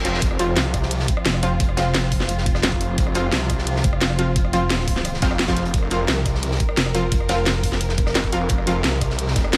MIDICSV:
0, 0, Header, 1, 7, 480
1, 0, Start_track
1, 0, Tempo, 344828
1, 309, Time_signature, 4, 2, 24, 8
1, 13323, End_track
2, 0, Start_track
2, 0, Title_t, "String section"
2, 0, Program_c, 0, 48
2, 0, Note_on_c, 0, 53, 78
2, 0, Note_on_c, 0, 60, 72
2, 0, Note_on_c, 0, 70, 90
2, 276, Note_off_c, 0, 70, 0
2, 309, Note_on_c, 0, 65, 86
2, 7957, Note_off_c, 0, 65, 0
2, 7987, Note_on_c, 0, 70, 89
2, 13323, Note_off_c, 0, 53, 0
2, 13323, Note_off_c, 0, 60, 0
2, 13323, Note_off_c, 0, 70, 0
2, 13323, End_track
3, 0, Start_track
3, 0, Title_t, "Synth stab"
3, 0, Program_c, 1, 62
3, 68, Note_on_c, 1, 53, 95
3, 68, Note_on_c, 1, 60, 88
3, 68, Note_on_c, 1, 65, 105
3, 201, Note_off_c, 1, 53, 0
3, 201, Note_off_c, 1, 60, 0
3, 201, Note_off_c, 1, 65, 0
3, 548, Note_on_c, 1, 53, 101
3, 548, Note_on_c, 1, 60, 91
3, 548, Note_on_c, 1, 65, 109
3, 681, Note_off_c, 1, 53, 0
3, 681, Note_off_c, 1, 60, 0
3, 681, Note_off_c, 1, 65, 0
3, 1989, Note_on_c, 1, 53, 97
3, 1989, Note_on_c, 1, 60, 88
3, 1989, Note_on_c, 1, 65, 107
3, 2121, Note_off_c, 1, 60, 0
3, 2121, Note_off_c, 1, 65, 0
3, 2122, Note_off_c, 1, 53, 0
3, 2468, Note_on_c, 1, 53, 100
3, 2468, Note_on_c, 1, 60, 89
3, 2468, Note_on_c, 1, 65, 110
3, 2601, Note_off_c, 1, 53, 0
3, 2601, Note_off_c, 1, 60, 0
3, 2601, Note_off_c, 1, 65, 0
3, 4388, Note_on_c, 1, 53, 102
3, 4388, Note_on_c, 1, 60, 90
3, 4388, Note_on_c, 1, 65, 110
3, 4521, Note_off_c, 1, 53, 0
3, 4521, Note_off_c, 1, 60, 0
3, 4521, Note_off_c, 1, 65, 0
3, 5829, Note_on_c, 1, 53, 96
3, 5829, Note_on_c, 1, 60, 86
3, 5829, Note_on_c, 1, 65, 108
3, 5961, Note_off_c, 1, 53, 0
3, 5961, Note_off_c, 1, 60, 0
3, 5962, Note_off_c, 1, 65, 0
3, 6308, Note_on_c, 1, 60, 91
3, 6308, Note_on_c, 1, 65, 110
3, 6309, Note_on_c, 1, 53, 98
3, 6441, Note_off_c, 1, 53, 0
3, 6441, Note_off_c, 1, 60, 0
3, 6441, Note_off_c, 1, 65, 0
3, 7268, Note_on_c, 1, 65, 108
3, 7269, Note_on_c, 1, 53, 94
3, 7269, Note_on_c, 1, 60, 92
3, 7401, Note_off_c, 1, 53, 0
3, 7401, Note_off_c, 1, 60, 0
3, 7401, Note_off_c, 1, 65, 0
3, 7629, Note_on_c, 1, 53, 99
3, 7629, Note_on_c, 1, 60, 93
3, 7629, Note_on_c, 1, 65, 111
3, 7841, Note_off_c, 1, 53, 0
3, 7841, Note_off_c, 1, 60, 0
3, 7841, Note_off_c, 1, 65, 0
3, 8227, Note_on_c, 1, 60, 91
3, 8228, Note_on_c, 1, 53, 98
3, 8228, Note_on_c, 1, 65, 110
3, 8361, Note_off_c, 1, 53, 0
3, 8361, Note_off_c, 1, 60, 0
3, 8361, Note_off_c, 1, 65, 0
3, 9668, Note_on_c, 1, 53, 97
3, 9668, Note_on_c, 1, 60, 88
3, 9668, Note_on_c, 1, 65, 105
3, 9801, Note_off_c, 1, 53, 0
3, 9801, Note_off_c, 1, 60, 0
3, 9801, Note_off_c, 1, 65, 0
3, 10149, Note_on_c, 1, 53, 102
3, 10149, Note_on_c, 1, 60, 94
3, 10149, Note_on_c, 1, 65, 112
3, 10281, Note_off_c, 1, 53, 0
3, 10281, Note_off_c, 1, 60, 0
3, 10281, Note_off_c, 1, 65, 0
3, 11588, Note_on_c, 1, 53, 97
3, 11588, Note_on_c, 1, 60, 88
3, 11589, Note_on_c, 1, 65, 102
3, 11721, Note_off_c, 1, 53, 0
3, 11721, Note_off_c, 1, 60, 0
3, 11721, Note_off_c, 1, 65, 0
3, 12068, Note_on_c, 1, 53, 100
3, 12068, Note_on_c, 1, 60, 93
3, 12068, Note_on_c, 1, 65, 111
3, 12201, Note_off_c, 1, 53, 0
3, 12201, Note_off_c, 1, 60, 0
3, 12201, Note_off_c, 1, 65, 0
3, 13323, End_track
4, 0, Start_track
4, 0, Title_t, "Detuned saw bass"
4, 0, Program_c, 2, 39
4, 0, Note_on_c, 2, 29, 99
4, 289, Note_off_c, 2, 29, 0
4, 308, Note_on_c, 2, 29, 100
4, 769, Note_off_c, 2, 29, 0
4, 789, Note_on_c, 2, 36, 96
4, 1490, Note_off_c, 2, 36, 0
4, 3667, Note_on_c, 2, 29, 102
4, 4129, Note_off_c, 2, 29, 0
4, 4147, Note_on_c, 2, 29, 101
4, 4609, Note_off_c, 2, 29, 0
4, 4628, Note_on_c, 2, 36, 97
4, 5329, Note_off_c, 2, 36, 0
4, 7269, Note_on_c, 2, 29, 98
4, 7969, Note_off_c, 2, 29, 0
4, 7989, Note_on_c, 2, 29, 100
4, 8449, Note_off_c, 2, 29, 0
4, 8469, Note_on_c, 2, 36, 98
4, 9170, Note_off_c, 2, 36, 0
4, 11348, Note_on_c, 2, 29, 97
4, 11809, Note_off_c, 2, 29, 0
4, 11828, Note_on_c, 2, 29, 98
4, 12289, Note_off_c, 2, 29, 0
4, 12308, Note_on_c, 2, 36, 95
4, 13009, Note_off_c, 2, 36, 0
4, 13028, Note_on_c, 2, 29, 101
4, 13323, Note_off_c, 2, 29, 0
4, 13323, End_track
5, 0, Start_track
5, 0, Title_t, "Wobble bass"
5, 0, Program_c, 3, 39
5, 1748, Note_on_c, 3, 29, 99
5, 3649, Note_off_c, 3, 29, 0
5, 5347, Note_on_c, 3, 29, 98
5, 7249, Note_off_c, 3, 29, 0
5, 9430, Note_on_c, 3, 29, 100
5, 11330, Note_off_c, 3, 29, 0
5, 13323, End_track
6, 0, Start_track
6, 0, Title_t, "Reverse cymbal"
6, 0, Program_c, 4, 119
6, 0, Note_on_c, 4, 60, 64
6, 309, Note_off_c, 4, 60, 0
6, 13323, End_track
7, 0, Start_track
7, 0, Title_t, "Drums"
7, 64, Note_on_c, 9, 42, 69
7, 68, Note_off_c, 9, 42, 0
7, 68, Note_on_c, 9, 42, 71
7, 197, Note_on_c, 9, 38, 57
7, 207, Note_off_c, 9, 42, 0
7, 304, Note_on_c, 9, 42, 94
7, 307, Note_off_c, 9, 42, 0
7, 307, Note_on_c, 9, 42, 101
7, 308, Note_on_c, 9, 36, 117
7, 336, Note_off_c, 9, 38, 0
7, 427, Note_on_c, 9, 37, 34
7, 447, Note_off_c, 9, 36, 0
7, 447, Note_off_c, 9, 42, 0
7, 548, Note_on_c, 9, 42, 69
7, 549, Note_off_c, 9, 42, 0
7, 549, Note_on_c, 9, 42, 70
7, 567, Note_off_c, 9, 37, 0
7, 688, Note_off_c, 9, 42, 0
7, 787, Note_on_c, 9, 38, 117
7, 787, Note_on_c, 9, 42, 98
7, 793, Note_off_c, 9, 42, 0
7, 793, Note_on_c, 9, 42, 93
7, 927, Note_off_c, 9, 38, 0
7, 932, Note_off_c, 9, 42, 0
7, 1028, Note_on_c, 9, 36, 63
7, 1028, Note_on_c, 9, 37, 38
7, 1028, Note_on_c, 9, 42, 70
7, 1030, Note_off_c, 9, 42, 0
7, 1030, Note_on_c, 9, 42, 76
7, 1150, Note_on_c, 9, 38, 58
7, 1167, Note_off_c, 9, 36, 0
7, 1167, Note_off_c, 9, 37, 0
7, 1169, Note_off_c, 9, 42, 0
7, 1263, Note_on_c, 9, 46, 80
7, 1267, Note_on_c, 9, 42, 101
7, 1289, Note_off_c, 9, 38, 0
7, 1384, Note_on_c, 9, 38, 54
7, 1402, Note_off_c, 9, 46, 0
7, 1406, Note_off_c, 9, 42, 0
7, 1507, Note_on_c, 9, 42, 74
7, 1508, Note_off_c, 9, 42, 0
7, 1508, Note_on_c, 9, 36, 103
7, 1508, Note_on_c, 9, 42, 70
7, 1523, Note_off_c, 9, 38, 0
7, 1628, Note_on_c, 9, 37, 52
7, 1647, Note_off_c, 9, 36, 0
7, 1648, Note_off_c, 9, 42, 0
7, 1748, Note_on_c, 9, 38, 125
7, 1748, Note_on_c, 9, 42, 99
7, 1753, Note_off_c, 9, 38, 0
7, 1753, Note_on_c, 9, 38, 121
7, 1768, Note_off_c, 9, 37, 0
7, 1868, Note_on_c, 9, 37, 49
7, 1887, Note_off_c, 9, 42, 0
7, 1893, Note_off_c, 9, 38, 0
7, 1988, Note_on_c, 9, 42, 71
7, 1994, Note_off_c, 9, 42, 0
7, 1994, Note_on_c, 9, 42, 63
7, 2007, Note_off_c, 9, 37, 0
7, 2134, Note_off_c, 9, 42, 0
7, 2227, Note_on_c, 9, 36, 125
7, 2227, Note_on_c, 9, 42, 97
7, 2238, Note_off_c, 9, 42, 0
7, 2238, Note_on_c, 9, 42, 94
7, 2348, Note_on_c, 9, 37, 33
7, 2367, Note_off_c, 9, 36, 0
7, 2378, Note_off_c, 9, 42, 0
7, 2465, Note_on_c, 9, 38, 104
7, 2469, Note_on_c, 9, 42, 69
7, 2471, Note_off_c, 9, 42, 0
7, 2471, Note_on_c, 9, 42, 78
7, 2487, Note_off_c, 9, 37, 0
7, 2604, Note_off_c, 9, 38, 0
7, 2610, Note_off_c, 9, 42, 0
7, 2708, Note_on_c, 9, 38, 125
7, 2708, Note_on_c, 9, 42, 94
7, 2709, Note_off_c, 9, 38, 0
7, 2709, Note_off_c, 9, 42, 0
7, 2709, Note_on_c, 9, 38, 114
7, 2709, Note_on_c, 9, 42, 96
7, 2824, Note_off_c, 9, 38, 0
7, 2824, Note_on_c, 9, 38, 43
7, 2848, Note_off_c, 9, 42, 0
7, 2948, Note_on_c, 9, 36, 68
7, 2948, Note_on_c, 9, 46, 75
7, 2952, Note_on_c, 9, 42, 66
7, 2963, Note_off_c, 9, 38, 0
7, 3068, Note_on_c, 9, 38, 39
7, 3071, Note_off_c, 9, 38, 0
7, 3071, Note_on_c, 9, 38, 54
7, 3087, Note_off_c, 9, 36, 0
7, 3087, Note_off_c, 9, 46, 0
7, 3091, Note_off_c, 9, 42, 0
7, 3179, Note_on_c, 9, 42, 99
7, 3187, Note_off_c, 9, 42, 0
7, 3187, Note_on_c, 9, 42, 95
7, 3210, Note_off_c, 9, 38, 0
7, 3310, Note_on_c, 9, 38, 61
7, 3326, Note_off_c, 9, 42, 0
7, 3428, Note_on_c, 9, 36, 108
7, 3428, Note_on_c, 9, 42, 69
7, 3430, Note_off_c, 9, 42, 0
7, 3430, Note_on_c, 9, 42, 68
7, 3449, Note_off_c, 9, 38, 0
7, 3542, Note_on_c, 9, 38, 63
7, 3547, Note_on_c, 9, 37, 50
7, 3567, Note_off_c, 9, 36, 0
7, 3570, Note_off_c, 9, 42, 0
7, 3662, Note_on_c, 9, 42, 89
7, 3663, Note_off_c, 9, 38, 0
7, 3663, Note_on_c, 9, 38, 120
7, 3667, Note_off_c, 9, 38, 0
7, 3667, Note_off_c, 9, 42, 0
7, 3667, Note_on_c, 9, 38, 127
7, 3667, Note_on_c, 9, 42, 98
7, 3687, Note_off_c, 9, 37, 0
7, 3788, Note_off_c, 9, 42, 0
7, 3788, Note_on_c, 9, 36, 66
7, 3788, Note_on_c, 9, 42, 44
7, 3806, Note_off_c, 9, 38, 0
7, 3907, Note_off_c, 9, 42, 0
7, 3907, Note_on_c, 9, 42, 67
7, 3917, Note_off_c, 9, 42, 0
7, 3917, Note_on_c, 9, 42, 62
7, 3927, Note_off_c, 9, 36, 0
7, 4056, Note_off_c, 9, 42, 0
7, 4147, Note_on_c, 9, 42, 93
7, 4148, Note_on_c, 9, 36, 124
7, 4151, Note_off_c, 9, 42, 0
7, 4151, Note_on_c, 9, 42, 97
7, 4268, Note_on_c, 9, 37, 33
7, 4287, Note_off_c, 9, 36, 0
7, 4291, Note_off_c, 9, 42, 0
7, 4379, Note_on_c, 9, 42, 72
7, 4388, Note_off_c, 9, 42, 0
7, 4388, Note_on_c, 9, 42, 65
7, 4407, Note_off_c, 9, 37, 0
7, 4527, Note_off_c, 9, 42, 0
7, 4628, Note_on_c, 9, 38, 127
7, 4628, Note_on_c, 9, 42, 89
7, 4629, Note_off_c, 9, 42, 0
7, 4629, Note_on_c, 9, 42, 94
7, 4630, Note_off_c, 9, 38, 0
7, 4630, Note_on_c, 9, 38, 116
7, 4769, Note_off_c, 9, 38, 0
7, 4769, Note_off_c, 9, 42, 0
7, 4868, Note_on_c, 9, 36, 65
7, 4868, Note_on_c, 9, 37, 38
7, 4868, Note_on_c, 9, 42, 66
7, 4871, Note_off_c, 9, 42, 0
7, 4871, Note_on_c, 9, 42, 65
7, 4988, Note_on_c, 9, 38, 54
7, 5007, Note_off_c, 9, 36, 0
7, 5007, Note_off_c, 9, 37, 0
7, 5011, Note_off_c, 9, 42, 0
7, 5107, Note_on_c, 9, 42, 92
7, 5112, Note_on_c, 9, 46, 82
7, 5127, Note_off_c, 9, 38, 0
7, 5235, Note_on_c, 9, 38, 64
7, 5246, Note_off_c, 9, 42, 0
7, 5251, Note_off_c, 9, 46, 0
7, 5347, Note_on_c, 9, 42, 66
7, 5348, Note_on_c, 9, 36, 114
7, 5349, Note_off_c, 9, 42, 0
7, 5349, Note_on_c, 9, 42, 68
7, 5374, Note_off_c, 9, 38, 0
7, 5468, Note_on_c, 9, 37, 49
7, 5487, Note_off_c, 9, 36, 0
7, 5488, Note_off_c, 9, 42, 0
7, 5577, Note_on_c, 9, 42, 84
7, 5588, Note_off_c, 9, 42, 0
7, 5588, Note_on_c, 9, 38, 127
7, 5588, Note_on_c, 9, 42, 95
7, 5589, Note_off_c, 9, 38, 0
7, 5589, Note_on_c, 9, 38, 126
7, 5607, Note_off_c, 9, 37, 0
7, 5707, Note_on_c, 9, 37, 46
7, 5727, Note_off_c, 9, 42, 0
7, 5728, Note_off_c, 9, 38, 0
7, 5828, Note_on_c, 9, 42, 66
7, 5847, Note_off_c, 9, 37, 0
7, 5967, Note_off_c, 9, 42, 0
7, 6066, Note_on_c, 9, 42, 88
7, 6067, Note_off_c, 9, 42, 0
7, 6067, Note_on_c, 9, 42, 93
7, 6068, Note_on_c, 9, 36, 122
7, 6188, Note_on_c, 9, 37, 33
7, 6207, Note_off_c, 9, 36, 0
7, 6207, Note_off_c, 9, 42, 0
7, 6307, Note_on_c, 9, 42, 70
7, 6308, Note_off_c, 9, 42, 0
7, 6308, Note_on_c, 9, 42, 63
7, 6327, Note_off_c, 9, 37, 0
7, 6447, Note_off_c, 9, 42, 0
7, 6542, Note_on_c, 9, 42, 92
7, 6548, Note_off_c, 9, 42, 0
7, 6548, Note_on_c, 9, 38, 121
7, 6548, Note_on_c, 9, 42, 88
7, 6550, Note_off_c, 9, 38, 0
7, 6550, Note_on_c, 9, 38, 122
7, 6672, Note_off_c, 9, 38, 0
7, 6672, Note_on_c, 9, 38, 48
7, 6687, Note_off_c, 9, 42, 0
7, 6788, Note_on_c, 9, 36, 65
7, 6788, Note_on_c, 9, 46, 83
7, 6792, Note_on_c, 9, 42, 67
7, 6812, Note_off_c, 9, 38, 0
7, 6905, Note_on_c, 9, 38, 59
7, 6908, Note_off_c, 9, 38, 0
7, 6908, Note_on_c, 9, 38, 38
7, 6927, Note_off_c, 9, 36, 0
7, 6927, Note_off_c, 9, 46, 0
7, 6931, Note_off_c, 9, 42, 0
7, 7024, Note_on_c, 9, 42, 96
7, 7028, Note_off_c, 9, 42, 0
7, 7028, Note_on_c, 9, 37, 33
7, 7028, Note_on_c, 9, 42, 89
7, 7047, Note_off_c, 9, 38, 0
7, 7153, Note_on_c, 9, 38, 57
7, 7167, Note_off_c, 9, 37, 0
7, 7167, Note_off_c, 9, 42, 0
7, 7267, Note_on_c, 9, 42, 65
7, 7268, Note_on_c, 9, 36, 110
7, 7271, Note_off_c, 9, 38, 0
7, 7271, Note_on_c, 9, 38, 104
7, 7272, Note_off_c, 9, 42, 0
7, 7272, Note_on_c, 9, 42, 77
7, 7383, Note_off_c, 9, 38, 0
7, 7383, Note_on_c, 9, 38, 42
7, 7387, Note_on_c, 9, 37, 47
7, 7407, Note_off_c, 9, 36, 0
7, 7411, Note_off_c, 9, 42, 0
7, 7507, Note_off_c, 9, 38, 0
7, 7507, Note_on_c, 9, 38, 127
7, 7507, Note_on_c, 9, 42, 92
7, 7513, Note_off_c, 9, 42, 0
7, 7513, Note_on_c, 9, 42, 60
7, 7527, Note_off_c, 9, 37, 0
7, 7628, Note_off_c, 9, 38, 0
7, 7628, Note_on_c, 9, 36, 67
7, 7628, Note_on_c, 9, 38, 114
7, 7630, Note_off_c, 9, 42, 0
7, 7630, Note_on_c, 9, 42, 75
7, 7745, Note_off_c, 9, 38, 0
7, 7745, Note_on_c, 9, 38, 40
7, 7747, Note_off_c, 9, 42, 0
7, 7747, Note_on_c, 9, 42, 61
7, 7768, Note_off_c, 9, 36, 0
7, 7870, Note_off_c, 9, 42, 0
7, 7870, Note_on_c, 9, 42, 62
7, 7884, Note_off_c, 9, 38, 0
7, 7988, Note_off_c, 9, 42, 0
7, 7988, Note_on_c, 9, 42, 89
7, 7989, Note_on_c, 9, 36, 116
7, 8001, Note_off_c, 9, 42, 0
7, 8001, Note_on_c, 9, 42, 87
7, 8108, Note_on_c, 9, 37, 31
7, 8128, Note_off_c, 9, 36, 0
7, 8140, Note_off_c, 9, 42, 0
7, 8217, Note_on_c, 9, 42, 60
7, 8228, Note_off_c, 9, 42, 0
7, 8228, Note_on_c, 9, 42, 63
7, 8247, Note_off_c, 9, 37, 0
7, 8368, Note_off_c, 9, 42, 0
7, 8468, Note_on_c, 9, 38, 122
7, 8468, Note_on_c, 9, 42, 89
7, 8471, Note_off_c, 9, 38, 0
7, 8471, Note_on_c, 9, 38, 118
7, 8476, Note_off_c, 9, 42, 0
7, 8476, Note_on_c, 9, 42, 98
7, 8610, Note_off_c, 9, 38, 0
7, 8615, Note_off_c, 9, 42, 0
7, 8706, Note_on_c, 9, 42, 69
7, 8708, Note_on_c, 9, 36, 63
7, 8709, Note_off_c, 9, 42, 0
7, 8709, Note_on_c, 9, 37, 34
7, 8709, Note_on_c, 9, 42, 64
7, 8834, Note_on_c, 9, 38, 56
7, 8847, Note_off_c, 9, 36, 0
7, 8848, Note_off_c, 9, 37, 0
7, 8848, Note_off_c, 9, 42, 0
7, 8949, Note_on_c, 9, 42, 90
7, 8952, Note_on_c, 9, 46, 88
7, 8973, Note_off_c, 9, 38, 0
7, 9066, Note_on_c, 9, 38, 58
7, 9088, Note_off_c, 9, 42, 0
7, 9092, Note_off_c, 9, 46, 0
7, 9188, Note_on_c, 9, 36, 109
7, 9188, Note_on_c, 9, 42, 67
7, 9205, Note_off_c, 9, 38, 0
7, 9308, Note_on_c, 9, 37, 47
7, 9328, Note_off_c, 9, 36, 0
7, 9328, Note_off_c, 9, 42, 0
7, 9428, Note_on_c, 9, 38, 125
7, 9428, Note_on_c, 9, 42, 91
7, 9430, Note_off_c, 9, 38, 0
7, 9430, Note_on_c, 9, 38, 122
7, 9447, Note_off_c, 9, 37, 0
7, 9548, Note_on_c, 9, 37, 46
7, 9567, Note_off_c, 9, 42, 0
7, 9569, Note_off_c, 9, 38, 0
7, 9668, Note_on_c, 9, 42, 64
7, 9671, Note_off_c, 9, 42, 0
7, 9671, Note_on_c, 9, 42, 71
7, 9687, Note_off_c, 9, 37, 0
7, 9810, Note_off_c, 9, 42, 0
7, 9908, Note_on_c, 9, 36, 116
7, 9908, Note_on_c, 9, 42, 93
7, 9909, Note_off_c, 9, 42, 0
7, 9909, Note_on_c, 9, 42, 96
7, 10029, Note_on_c, 9, 37, 30
7, 10047, Note_off_c, 9, 36, 0
7, 10049, Note_off_c, 9, 42, 0
7, 10142, Note_on_c, 9, 42, 79
7, 10149, Note_off_c, 9, 42, 0
7, 10149, Note_on_c, 9, 42, 66
7, 10155, Note_on_c, 9, 38, 100
7, 10168, Note_off_c, 9, 37, 0
7, 10288, Note_off_c, 9, 42, 0
7, 10295, Note_off_c, 9, 38, 0
7, 10389, Note_on_c, 9, 38, 115
7, 10389, Note_on_c, 9, 42, 91
7, 10390, Note_off_c, 9, 42, 0
7, 10390, Note_on_c, 9, 42, 88
7, 10396, Note_off_c, 9, 38, 0
7, 10396, Note_on_c, 9, 38, 124
7, 10503, Note_off_c, 9, 38, 0
7, 10503, Note_on_c, 9, 38, 41
7, 10529, Note_off_c, 9, 42, 0
7, 10627, Note_on_c, 9, 36, 60
7, 10629, Note_on_c, 9, 46, 82
7, 10636, Note_on_c, 9, 42, 74
7, 10643, Note_off_c, 9, 38, 0
7, 10748, Note_on_c, 9, 38, 36
7, 10750, Note_off_c, 9, 38, 0
7, 10750, Note_on_c, 9, 38, 53
7, 10767, Note_off_c, 9, 36, 0
7, 10768, Note_off_c, 9, 46, 0
7, 10775, Note_off_c, 9, 42, 0
7, 10868, Note_on_c, 9, 42, 94
7, 10869, Note_off_c, 9, 42, 0
7, 10869, Note_on_c, 9, 42, 87
7, 10889, Note_off_c, 9, 38, 0
7, 10981, Note_on_c, 9, 38, 62
7, 11008, Note_off_c, 9, 42, 0
7, 11104, Note_on_c, 9, 42, 73
7, 11107, Note_on_c, 9, 36, 103
7, 11108, Note_off_c, 9, 42, 0
7, 11108, Note_on_c, 9, 42, 69
7, 11121, Note_off_c, 9, 38, 0
7, 11220, Note_on_c, 9, 38, 65
7, 11229, Note_on_c, 9, 37, 47
7, 11247, Note_off_c, 9, 36, 0
7, 11247, Note_off_c, 9, 42, 0
7, 11342, Note_on_c, 9, 42, 96
7, 11349, Note_off_c, 9, 38, 0
7, 11349, Note_off_c, 9, 42, 0
7, 11349, Note_on_c, 9, 38, 117
7, 11349, Note_on_c, 9, 42, 95
7, 11350, Note_off_c, 9, 38, 0
7, 11350, Note_on_c, 9, 38, 113
7, 11368, Note_off_c, 9, 37, 0
7, 11467, Note_on_c, 9, 36, 62
7, 11475, Note_off_c, 9, 42, 0
7, 11475, Note_on_c, 9, 42, 47
7, 11490, Note_off_c, 9, 38, 0
7, 11588, Note_off_c, 9, 42, 0
7, 11588, Note_on_c, 9, 42, 65
7, 11591, Note_off_c, 9, 42, 0
7, 11591, Note_on_c, 9, 42, 68
7, 11606, Note_off_c, 9, 36, 0
7, 11730, Note_off_c, 9, 42, 0
7, 11817, Note_on_c, 9, 42, 88
7, 11827, Note_on_c, 9, 36, 116
7, 11828, Note_off_c, 9, 42, 0
7, 11828, Note_on_c, 9, 42, 99
7, 11948, Note_on_c, 9, 37, 32
7, 11966, Note_off_c, 9, 36, 0
7, 11968, Note_off_c, 9, 42, 0
7, 12068, Note_on_c, 9, 42, 71
7, 12072, Note_off_c, 9, 42, 0
7, 12072, Note_on_c, 9, 42, 66
7, 12087, Note_off_c, 9, 37, 0
7, 12211, Note_off_c, 9, 42, 0
7, 12297, Note_on_c, 9, 38, 118
7, 12308, Note_off_c, 9, 38, 0
7, 12308, Note_on_c, 9, 38, 115
7, 12308, Note_on_c, 9, 42, 96
7, 12311, Note_off_c, 9, 42, 0
7, 12311, Note_on_c, 9, 42, 82
7, 12447, Note_off_c, 9, 38, 0
7, 12450, Note_off_c, 9, 42, 0
7, 12548, Note_on_c, 9, 36, 59
7, 12548, Note_on_c, 9, 37, 36
7, 12548, Note_on_c, 9, 42, 70
7, 12549, Note_off_c, 9, 42, 0
7, 12549, Note_on_c, 9, 42, 70
7, 12669, Note_on_c, 9, 38, 55
7, 12687, Note_off_c, 9, 36, 0
7, 12687, Note_off_c, 9, 37, 0
7, 12688, Note_off_c, 9, 42, 0
7, 12788, Note_on_c, 9, 42, 99
7, 12799, Note_on_c, 9, 46, 77
7, 12808, Note_off_c, 9, 38, 0
7, 12912, Note_on_c, 9, 38, 64
7, 12927, Note_off_c, 9, 42, 0
7, 12938, Note_off_c, 9, 46, 0
7, 13026, Note_off_c, 9, 38, 0
7, 13026, Note_on_c, 9, 38, 103
7, 13028, Note_on_c, 9, 36, 101
7, 13028, Note_on_c, 9, 42, 72
7, 13030, Note_off_c, 9, 42, 0
7, 13030, Note_on_c, 9, 42, 75
7, 13148, Note_on_c, 9, 37, 47
7, 13165, Note_off_c, 9, 38, 0
7, 13167, Note_off_c, 9, 36, 0
7, 13169, Note_off_c, 9, 42, 0
7, 13265, Note_on_c, 9, 42, 94
7, 13268, Note_off_c, 9, 42, 0
7, 13268, Note_on_c, 9, 38, 121
7, 13268, Note_on_c, 9, 42, 96
7, 13273, Note_off_c, 9, 38, 0
7, 13273, Note_on_c, 9, 38, 112
7, 13287, Note_off_c, 9, 37, 0
7, 13323, Note_off_c, 9, 38, 0
7, 13323, Note_off_c, 9, 42, 0
7, 13323, End_track
0, 0, End_of_file